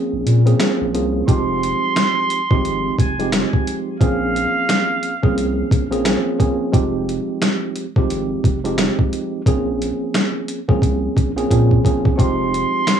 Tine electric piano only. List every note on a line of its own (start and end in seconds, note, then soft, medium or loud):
0.00 0.39 F3 medium
0.00 0.40 A#3 medium
0.00 0.40 C4 medium
0.00 0.40 C#4 medium
0.00 0.40 G#4 loud
0.45 0.58 F3 medium
0.45 0.59 A#3 medium
0.45 0.59 C4 medium
0.45 0.59 C#4 medium
0.45 0.60 G#4 loud
0.59 0.92 F3 medium
0.59 0.92 A#3 medium
0.59 0.92 C4 medium
0.59 0.92 C#4 medium
0.59 0.92 G#4 medium
0.94 1.26 F3 medium
0.94 1.26 A#3 medium
0.94 1.26 C4 medium
0.94 1.26 C#4 medium
0.94 1.27 G#4 medium
1.27 2.39 F3 loud
1.27 2.39 G#3 medium
1.27 2.39 C4 medium
1.27 2.40 D#4 medium
1.27 2.40 G4 loud
2.51 3.12 F3 loud
2.51 3.13 G#3 medium
2.51 3.13 C4 medium
2.51 3.13 D#4 medium
2.51 3.13 G4 loud
3.19 3.95 F3 medium
3.19 3.96 G#3 medium
3.19 3.96 C4 medium
3.19 3.96 D#4 medium
3.19 3.96 G4 loud
4.00 5.12 F3 medium
4.00 5.12 A#3 medium
4.00 5.12 C4 medium
4.00 5.12 C#4 medium
4.00 5.13 G#4 loud
5.23 5.85 F3 medium
5.23 5.85 A#3 medium
5.23 5.85 C4 medium
5.23 5.85 C#4 medium
5.23 5.85 G#4 loud
5.91 6.03 F3 medium
5.91 6.04 A#3 medium
5.91 6.04 C4 medium
5.91 6.04 C#4 medium
5.91 6.04 G#4 loud
6.04 6.37 F3 medium
6.04 6.37 A#3 medium
6.04 6.37 C4 medium
6.04 6.37 C#4 medium
6.04 6.37 G#4 medium
6.39 6.71 F3 medium
6.39 6.71 A#3 medium
6.39 6.71 C4 medium
6.39 6.71 C#4 medium
6.39 6.72 G#4 medium
6.72 7.84 F3 loud
6.72 7.84 G#3 medium
6.72 7.84 C4 medium
6.72 7.85 D#4 medium
6.72 7.85 G4 loud
7.96 8.58 F3 loud
7.96 8.58 G#3 medium
7.96 8.58 C4 medium
7.96 8.59 D#4 medium
7.96 8.59 G4 loud
8.64 9.41 F3 loud
8.64 9.41 G#3 medium
8.64 9.41 C4 medium
8.64 9.41 D#4 medium
8.64 9.41 G4 loud
9.46 10.57 F3 medium
9.46 10.58 A#3 medium
9.46 10.58 C4 medium
9.46 10.58 C#4 medium
9.46 10.58 G#4 loud
10.68 11.30 F3 medium
10.68 11.30 A#3 medium
10.68 11.31 C4 medium
10.68 11.31 C#4 medium
10.68 11.31 G#4 loud
11.36 11.49 F3 medium
11.36 11.49 A#3 medium
11.36 11.49 C4 medium
11.36 11.50 C#4 medium
11.36 11.50 G#4 loud
11.50 11.82 F3 medium
11.50 11.82 A#3 medium
11.50 11.83 C4 medium
11.50 11.83 C#4 medium
11.50 11.83 G#4 medium
11.84 12.16 F3 medium
11.84 12.17 A#3 medium
11.84 12.17 C4 medium
11.84 12.17 C#4 medium
11.84 12.17 G#4 medium
12.17 13.00 F3 loud
12.17 13.00 G#3 medium
12.17 13.00 C4 medium
12.17 13.00 D#4 medium
12.17 13.00 G4 loud